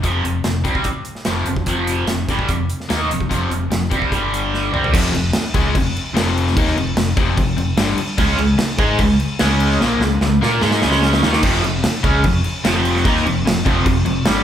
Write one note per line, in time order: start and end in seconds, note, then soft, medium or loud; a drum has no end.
0.02 0.23 F1 medium
0.02 0.22 F2 medium
0.02 0.23 C3 medium
0.02 0.24 F3 medium
0.02 kick medium
0.02 closed hi-hat medium
0.24 0.43 F1 medium
0.24 0.41 F2 medium
0.24 0.41 C3 medium
0.24 closed hi-hat medium
0.44 0.64 F1 medium
0.44 0.61 F2 medium
0.44 0.62 C3 medium
0.44 snare loud
0.44 closed hi-hat medium
0.64 0.84 C2 medium
0.64 0.85 C3 medium
0.64 0.85 G3 medium
0.64 0.85 C4 medium
0.64 kick medium
0.64 closed hi-hat medium
0.75 kick medium
0.84 muted fingered electric bass stroke soft
0.84 muted overdriven electric guitar stroke medium
0.84 kick medium
0.84 closed hi-hat medium
1.05 closed hi-hat medium
1.15 snare soft
1.25 1.45 F1 medium
1.25 1.46 F2 medium
1.25 1.47 C3 medium
1.25 1.47 F3 medium
1.25 snare medium
1.25 closed hi-hat medium
1.46 1.66 F1 medium
1.46 1.64 F2 medium
1.46 1.64 C3 medium
1.46 closed hi-hat medium
1.56 kick medium
1.66 2.05 F1 medium
1.66 2.08 F2 medium
1.66 2.09 C3 medium
1.66 2.09 F3 loud
1.66 kick medium
1.66 closed hi-hat medium
1.87 closed hi-hat medium
2.07 2.27 F1 medium
2.07 2.25 F2 medium
2.07 2.26 C3 medium
2.07 snare medium
2.07 closed hi-hat medium
2.28 2.48 G1 medium
2.28 2.49 G2 medium
2.28 2.49 D3 medium
2.28 2.50 G3 medium
2.28 kick medium
2.28 snare soft
2.28 closed hi-hat medium
2.39 kick medium
2.49 2.69 F1 medium
2.49 2.66 F2 medium
2.49 2.66 C3 medium
2.49 kick medium
2.49 closed hi-hat medium
2.70 closed hi-hat medium
2.80 snare soft
2.89 3.10 D#2 medium
2.89 3.09 D#3 medium
2.89 3.10 A#3 medium
2.89 3.10 D#4 medium
2.89 snare medium
2.89 closed hi-hat medium
3.10 3.30 F1 medium
3.10 3.27 F2 medium
3.10 3.27 C3 medium
3.10 closed hi-hat medium
3.20 kick medium
3.29 3.50 F1 medium
3.29 3.49 F2 medium
3.29 3.49 C3 medium
3.29 3.51 F3 medium
3.29 kick medium
3.29 closed hi-hat medium
3.50 3.70 F1 medium
3.50 3.67 F2 medium
3.50 3.68 C3 medium
3.50 closed hi-hat medium
3.71 3.91 F1 medium
3.71 3.88 F2 medium
3.71 3.88 C3 medium
3.71 snare loud
3.71 closed hi-hat medium
3.90 4.11 C2 medium
3.90 4.10 C3 medium
3.90 4.10 G3 medium
3.90 4.12 C4 medium
3.90 kick medium
3.90 closed hi-hat medium
4.02 kick medium
4.10 4.69 G1 medium
4.10 4.72 G2 medium
4.10 4.72 D3 medium
4.10 4.72 G3 medium
4.10 kick medium
4.10 closed hi-hat medium
4.34 closed hi-hat medium
4.54 snare soft
4.71 4.92 C2 medium
4.71 4.92 C3 medium
4.71 4.93 G3 medium
4.71 4.94 C4 medium
4.71 mid tom medium
4.84 floor tom medium
4.93 5.12 F1 loud
4.93 5.12 F2 loud
4.93 5.13 C3 loud
4.93 5.14 F3 loud
4.93 kick loud
4.93 crash loud
4.93 crash medium
5.12 5.32 F1 medium
5.12 5.30 F2 medium
5.12 5.31 C3 medium
5.12 crash medium
5.33 muted fingered electric bass stroke soft
5.33 muted overdriven electric guitar stroke medium
5.33 snare loud
5.33 crash medium
5.54 5.74 C#2 loud
5.54 5.75 C#3 loud
5.54 5.75 G#3 loud
5.54 5.75 C#4 loud
5.54 kick loud
5.54 crash medium
5.75 5.94 F1 medium
5.75 5.92 F2 medium
5.75 5.92 C3 medium
5.75 kick loud
5.75 crash medium
5.96 crash medium
6.14 6.53 F1 medium
6.14 6.55 F2 medium
6.14 6.56 C3 loud
6.14 6.56 F3 loud
6.14 snare loud
6.14 crash medium
6.38 crash medium
6.47 snare soft
6.57 6.75 D#2 loud
6.57 6.76 D#3 loud
6.57 6.77 A#3 loud
6.57 6.77 D#4 loud
6.57 kick loud
6.57 crash medium
6.67 snare soft
6.75 6.94 F1 medium
6.75 6.93 F2 medium
6.75 6.93 C3 medium
6.75 crash medium
6.95 7.15 F1 medium
6.95 7.13 F2 medium
6.95 7.14 C3 medium
6.95 snare loud
6.95 crash medium
7.17 7.36 F1 loud
7.17 7.37 F2 medium
7.17 7.37 C3 loud
7.17 7.37 F3 loud
7.17 kick loud
7.17 crash medium
7.37 7.56 F1 medium
7.37 7.54 F2 medium
7.37 7.54 C3 medium
7.37 kick medium
7.37 crash medium
7.57 7.76 F1 medium
7.57 7.73 F2 medium
7.57 7.74 C3 medium
7.57 crash medium
7.77 7.96 G1 medium
7.77 7.97 G2 medium
7.77 7.98 D3 medium
7.77 7.98 G3 loud
7.77 snare loud
7.77 crash medium
7.98 muted fingered electric bass stroke soft
7.98 muted overdriven electric guitar stroke medium
7.98 crash medium
8.18 8.37 C#2 medium
8.18 8.36 C#3 loud
8.18 8.36 G#3 loud
8.18 8.38 C#4 loud
8.18 kick loud
8.18 crash medium
8.37 8.57 C#2 medium
8.37 8.54 C#3 medium
8.37 8.54 G#3 medium
8.37 crash medium
8.58 muted fingered electric bass stroke soft
8.58 muted overdriven electric guitar stroke medium
8.58 snare loud
8.58 crash medium
8.78 8.98 G#2 loud
8.78 8.99 G#3 medium
8.78 9.00 D#4 loud
8.78 8.99 G#4 loud
8.78 kick loud
8.78 crash medium
8.98 9.18 C#2 medium
8.98 9.16 C#3 medium
8.98 9.16 G#3 medium
8.98 kick loud
8.98 crash medium
9.20 crash medium
9.39 9.78 C#2 medium
9.39 9.80 C#3 medium
9.39 9.80 G#3 loud
9.39 9.80 C#4 loud
9.39 snare loud
9.39 crash medium
9.60 crash medium
9.71 snare soft
9.81 9.99 A#1 medium
9.81 10.01 A#2 loud
9.81 10.01 F3 loud
9.81 10.01 A#3 loud
9.81 snare medium
9.99 10.19 C#2 medium
9.99 10.18 C#3 medium
9.99 10.18 G#3 medium
9.99 snare medium
10.21 10.40 C#2 medium
10.21 10.38 C#3 medium
10.21 10.38 G#3 medium
10.21 snare medium
10.40 10.60 A#2 loud
10.40 10.61 A#3 medium
10.40 10.61 F4 medium
10.40 10.61 A#4 loud
10.40 snare medium
10.61 10.81 G#2 medium
10.61 10.81 G#3 loud
10.61 10.82 D#4 medium
10.61 10.82 G#4 loud
10.61 snare medium
10.71 snare medium
10.82 11.21 C#2 medium
10.82 11.22 C#3 medium
10.82 11.23 G#3 medium
10.82 11.23 C#4 loud
10.82 snare medium
10.92 snare medium
11.02 snare medium
11.13 snare medium
11.23 11.42 D#2 loud
11.23 11.42 D#3 medium
11.23 11.43 A#3 medium
11.23 11.42 D#4 loud
11.23 snare loud
11.33 snare loud
11.42 11.62 F1 medium
11.42 11.62 F2 medium
11.42 11.63 C3 loud
11.42 11.62 F3 loud
11.42 kick loud
11.42 crash loud
11.42 crash medium
11.54 snare soft
11.64 11.82 F1 medium
11.64 11.80 F2 medium
11.64 11.80 C3 medium
11.64 crash medium
11.84 muted overdriven electric guitar stroke medium
11.84 muted fingered electric bass stroke soft
11.84 snare loud
11.84 crash medium
12.03 12.23 C#2 medium
12.03 12.23 C#3 medium
12.03 12.24 G#3 medium
12.03 12.23 C#4 loud
12.03 kick loud
12.03 crash medium
12.24 12.43 F1 medium
12.24 12.40 F2 medium
12.24 12.40 C3 medium
12.24 kick loud
12.24 crash medium
12.44 crash medium
12.64 13.02 F1 medium
12.64 13.04 F2 loud
12.64 13.04 C3 loud
12.64 13.04 F3 loud
12.64 snare loud
12.64 crash medium
12.85 crash medium
12.96 snare soft
13.04 13.24 D#2 loud
13.04 13.24 D#3 medium
13.04 13.25 A#3 loud
13.04 13.25 D#4 loud
13.04 kick loud
13.04 crash medium
13.16 snare soft
13.25 13.44 F1 medium
13.25 13.41 F2 medium
13.25 13.42 C3 medium
13.25 crash medium
13.45 13.64 F1 medium
13.45 13.61 F2 medium
13.45 13.62 C3 medium
13.45 snare loud
13.45 crash medium
13.65 13.85 F1 loud
13.65 13.84 F2 medium
13.65 13.85 C3 loud
13.65 13.85 F3 loud
13.65 kick loud
13.65 crash medium
13.86 14.05 F1 medium
13.86 14.02 F2 medium
13.86 14.02 C3 medium
13.86 kick medium
13.86 crash medium
14.05 14.25 F1 medium
14.05 14.22 F2 medium
14.05 14.22 C3 medium
14.05 crash medium
14.25 14.44 G1 medium
14.25 14.44 G2 medium
14.25 14.44 D3 loud
14.25 14.44 G3 loud
14.25 snare loud
14.25 crash medium